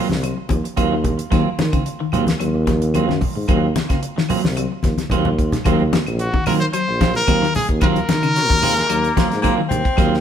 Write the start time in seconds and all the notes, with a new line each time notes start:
Already playing: F#3
0.09 C2, muted clean electric guitar stroke, snare, high conga
0.23 F#3, closed hi-hat, high conga, claves
0.37 muted clean electric guitar stroke
0.49 D#2 F3, kick, closed hi-hat, high conga
0.64 muted clean electric guitar stroke, closed hi-hat
0.77 D#2 F#3 A#3 C4 F4, kick, closed hi-hat, high conga, claves
0.93 D#3
1.04 muted clean electric guitar stroke, kick, closed hi-hat, low conga
1.18 muted clean electric guitar stroke, closed hi-hat
1.30 D#2 D#3 F#3 A#3 C4 F4, kick, snare, closed hi-hat, high conga, claves
1.58 D#3, muted clean electric guitar stroke, snare, closed hi-hat, high conga
1.72 C#3 A#3 C4 F4, kick, closed hi-hat, claves
1.86 muted clean electric guitar stroke, closed hi-hat, high conga
2.00 D#2 D#3, muted clean electric guitar stroke
2.12 D#2 F#3 A#3 C4 F4, closed hi-hat, low conga, claves
2.27 muted clean electric guitar stroke, snare, closed hi-hat, high conga
2.40 D#2 F#3, closed hi-hat, high conga, claves
2.55 muted clean electric guitar stroke
2.67 F3, kick, snare, closed hi-hat, high conga, low conga
2.82 muted clean electric guitar stroke, closed hi-hat
2.94 F#3 A#3 C4 F4, closed hi-hat, high conga, claves
3.09 F#2 D#3, snare, high conga
3.21 muted clean electric guitar stroke, kick, open hi-hat, low conga
3.35 G#2, muted clean electric guitar stroke
3.48 D#2 D#3 F#3 A#3 C4 F4, kick, closed hi-hat, claves
3.76 muted clean electric guitar stroke, snare, closed hi-hat, high conga
3.89 C#3 A#3 C4 F4, kick, snare, closed hi-hat, claves
4.02 muted clean electric guitar stroke, closed hi-hat, high conga
4.16 D#3, muted clean electric guitar stroke, snare
4.29 F#3 A#3 C4 F4, open hi-hat, low conga, claves
4.44 C2, muted clean electric guitar stroke, snare, high conga
4.57 F#3, closed hi-hat, high conga, claves
4.72 muted clean electric guitar stroke
4.83 D#2 F3, kick, snare, closed hi-hat, high conga
4.98 muted clean electric guitar stroke, snare, closed hi-hat, high conga
5.10 D#2 F#3 A#3 C4 F4, kick, closed hi-hat, low conga, claves
5.25 F3, low conga
5.38 muted clean electric guitar stroke, kick, closed hi-hat
5.52 muted clean electric guitar stroke, snare, closed hi-hat, low conga
5.64 D#2 D#3 F#3 A#3 C4 F4, kick, closed hi-hat, low conga, claves
5.80 high conga
5.93 muted clean electric guitar stroke, snare, closed hi-hat, high conga
6.06 A#1, closed hi-hat, claves
6.19 F#4, muted clean electric guitar stroke, closed hi-hat
6.33 D#3, muted clean electric guitar stroke, kick, high conga
6.46 D#3 F#3 A#3 C4 F4 A#4, open hi-hat, low conga, claves
6.60 C5, muted clean electric guitar stroke, closed hi-hat
6.73 F#3 C5, closed hi-hat, claves
6.88 A#1, muted clean electric guitar stroke
7.00 F3 F#3 A#3 C4 F4, kick, snare, closed hi-hat, high conga
7.15 A#4, muted clean electric guitar stroke, snare, closed hi-hat
7.27 D#2 F#3 A#3 C4 F4, kick, closed hi-hat, high conga, claves
7.42 D#3, snare
7.54 G#4, muted clean electric guitar stroke, open hi-hat, low conga
7.69 D#2, muted clean electric guitar stroke, kick, closed hi-hat
7.81 D#3 F#3 A#3 C4 F4 A#4, kick, closed hi-hat, low conga, claves
7.96 closed hi-hat, high conga
8.09 D#3, muted clean electric guitar stroke, snare, closed hi-hat, high conga
8.23 C#3, closed hi-hat, claves
8.36 F#3, muted clean electric guitar stroke, snare, closed hi-hat
8.50 D#2 D#3, muted clean electric guitar stroke, kick, closed hi-hat, high conga
8.62 G#3 A#3 C4 F4, muted clean electric guitar stroke, open hi-hat, low conga, claves
8.76 muted clean electric guitar stroke, snare, closed hi-hat
8.88 D#2 F#3 A#3, closed hi-hat, claves
9.04 muted clean electric guitar stroke, closed hi-hat
9.16 D#2 F3 F#3 A#3 C4 F4, kick, snare, closed hi-hat, high conga
9.30 G#2, muted clean electric guitar stroke, snare, closed hi-hat
9.42 F#3 A#3 C4 F4, kick, closed hi-hat, high conga, claves
9.58 D#3
9.69 D#2 C4, muted clean electric guitar stroke, closed hi-hat, low conga
9.85 muted clean electric guitar stroke, kick, closed hi-hat
9.97 D#2 D#3 F#3 A#3 C4 F4, kick, snare, closed hi-hat, claves
10.14 snare